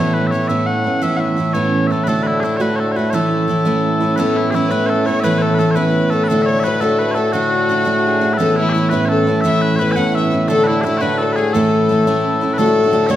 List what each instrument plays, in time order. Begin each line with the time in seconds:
Already playing: twelve-string acoustic guitar A2 E3, bagpipes A2 A3 C#5
0.00 twelve-string acoustic guitar B3 C#4 E4
0.14 bagpipes B4
0.27 bagpipes E5
0.31 twelve-string acoustic guitar E3 B3 C#4 E4, bagpipes C#5
0.48 twelve-string acoustic guitar A2 E3 B3 C#4 E4, bagpipes E5
0.66 bagpipes F#5
0.84 twelve-string acoustic guitar B3 C#4 E4
1.02 twelve-string acoustic guitar A2 E3 B3 C#4 E4, bagpipes E5
1.17 bagpipes E5 F#5
1.37 twelve-string acoustic guitar E3 B3 C#4 E4
1.53 twelve-string acoustic guitar A2 E3 B3 C#4 E4, bagpipes C#5
1.87 twelve-string acoustic guitar E4, bagpipes E5
1.92 twelve-string acoustic guitar B3 C#4, bagpipes A4
2.04 twelve-string acoustic guitar D3 A3, bagpipes B4
2.08 twelve-string acoustic guitar D4 F#4, bagpipes A4
2.23 bagpipes E4 B4
2.40 twelve-string acoustic guitar D3, bagpipes E4 G#4
2.44 twelve-string acoustic guitar A3 D4 F#4
2.57 twelve-string acoustic guitar D4 F#4, bagpipes C#5
2.61 twelve-string acoustic guitar D3 A3, bagpipes B4
2.76 bagpipes C#5
2.80 bagpipes A4
2.92 bagpipes C#5
2.96 twelve-string acoustic guitar A3 D4 F#4, bagpipes B4
3.10 twelve-string acoustic guitar A2 E3, bagpipes C#5
3.14 twelve-string acoustic guitar A3 C#4 E4, bagpipes A4
3.48 twelve-string acoustic guitar E3 A3 C#4 E4
3.65 twelve-string acoustic guitar A2 E3 A3 C#4 E4
4.00 twelve-string acoustic guitar A3 C#4 E4
4.16 twelve-string acoustic guitar A2 E3 B3 C#4 E4, fiddle A4, bagpipes A4 B4
4.36 fiddle E4, bagpipes E4
4.50 twelve-string acoustic guitar E3 B3, fiddle E4, bagpipes G#4
4.55 twelve-string acoustic guitar C#4 E4, bagpipes E4
4.68 twelve-string acoustic guitar E3 B3 C#4 E4, fiddle B4, bagpipes B4
4.72 twelve-string acoustic guitar A2
4.86 fiddle A4, bagpipes A4 C#5
5.05 twelve-string acoustic guitar C#4 E4, fiddle C#5, bagpipes C#5
5.10 twelve-string acoustic guitar B3
5.20 twelve-string acoustic guitar A2 E3, fiddle B4, bagpipes B4 E5
5.24 twelve-string acoustic guitar B3 C#4 E4
5.38 fiddle A4, bagpipes A4 C#5
5.55 twelve-string acoustic guitar E3, bagpipes B4
5.59 twelve-string acoustic guitar B3 C#4 E4, bagpipes A4
5.71 bagpipes C#5
5.75 twelve-string acoustic guitar A2 E3 B3 C#4 E4, bagpipes B4, fiddle B4
6.10 twelve-string acoustic guitar C#4 E4, bagpipes A4, fiddle A4
6.15 twelve-string acoustic guitar B3
6.24 bagpipes B4
6.28 twelve-string acoustic guitar D3 A3 D4, fiddle A4, bagpipes A4
6.32 twelve-string acoustic guitar F#4
6.42 bagpipes C#5 E5
6.48 fiddle C#5
6.60 twelve-string acoustic guitar D3, bagpipes B4 E5
6.65 twelve-string acoustic guitar A3 D4 F#4, fiddle B4
6.81 twelve-string acoustic guitar D3 A3 D4 F#4, bagpipes A4, fiddle A4
6.99 bagpipes B4, fiddle B4
7.11 bagpipes A4 C#5
7.16 twelve-string acoustic guitar A3 D4 F#4, fiddle A4
7.32 twelve-string acoustic guitar D3 A3 D4 F#4, bagpipes F#4, fiddle F#4
7.69 twelve-string acoustic guitar D3 A3 D4 F#4
7.85 twelve-string acoustic guitar D3 A3 D4 F#4
8.07 fiddle G#4
8.21 twelve-string acoustic guitar A3 D4 F#4
8.33 bagpipes B4
8.38 twelve-string acoustic guitar A2 E3 B3 C#4 E4, bagpipes A4, fiddle A4
8.56 bagpipes E4, fiddle E4
8.69 bagpipes E4 G#4
8.74 twelve-string acoustic guitar E3 B3 C#4 E4
8.90 twelve-string acoustic guitar E3 B3 C#4 E4, bagpipes B4, fiddle B4
8.94 twelve-string acoustic guitar A2
9.05 bagpipes A4 C#5
9.10 fiddle A4
9.27 twelve-string acoustic guitar B3 C#4 E4
9.41 twelve-string acoustic guitar A2 E3 B3, bagpipes E5, fiddle E5
9.45 twelve-string acoustic guitar C#4 E4
9.62 bagpipes B4
9.76 twelve-string acoustic guitar E3 B3, bagpipes B4 C#5
9.81 twelve-string acoustic guitar C#4 E4, fiddle B4
9.92 bagpipes G#5
9.96 twelve-string acoustic guitar A2 E3 B3 C#4 E4, bagpipes F#5, fiddle F#5
10.15 bagpipes E5, fiddle E5
10.31 twelve-string acoustic guitar B3 C#4 E4
10.48 twelve-string acoustic guitar D3 A3 D4 F#4, bagpipes A4, fiddle A4
10.64 bagpipes E4 B4
10.69 fiddle E4
10.81 twelve-string acoustic guitar D3 A3, bagpipes E4 G#4
10.86 twelve-string acoustic guitar D4 F#4, fiddle E4
10.98 twelve-string acoustic guitar D4 F#4, bagpipes B4 C#5
11.02 twelve-string acoustic guitar D3 A3, fiddle B4
11.18 bagpipes A4
11.22 fiddle A4
11.33 twelve-string acoustic guitar F#4, bagpipes G#4 B4
11.38 twelve-string acoustic guitar A3 D4, fiddle G#4
11.53 twelve-string acoustic guitar A2 E3 A3 C#4 E4, bagpipes A4, fiddle A4
11.89 twelve-string acoustic guitar E3 A3 C#4 E4
12.07 twelve-string acoustic guitar A2 E3 A3 C#4 E4
12.41 twelve-string acoustic guitar A3 C#4 E4
12.54 twelve-string acoustic guitar D3, fiddle A4, bagpipes B4
12.58 twelve-string acoustic guitar A3 D4 F#4, bagpipes A4
12.66 twelve-string acoustic guitar A3 D4 F#4
12.84 twelve-string acoustic guitar A3 D4 F#4
12.91 twelve-string acoustic guitar D3 A3 D4 F#4
13.07 twelve-string acoustic guitar D3 A3 D4 F#4, fiddle C#5, bagpipes C#5 E5